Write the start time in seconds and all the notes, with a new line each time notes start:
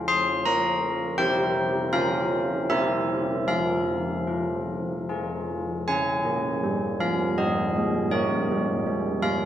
Already playing: C#4 F4
0.08 C6
0.46 F4 A#4 A#5
1.18 C4 E4 G4 G5
1.93 C#4 F4 A#4 F5
2.70 C4 G4 A#4 E5
3.48 F3 F5
4.27 F4
5.09 F4 G#4
5.88 C#4 G#4 G#5
6.25 A#3
6.63 G3
7.00 F3 F5
7.38 G3 D#5
7.76 G#3
8.11 A#3 G4 C#5
8.51 G3
8.86 G#3
9.23 G3 F5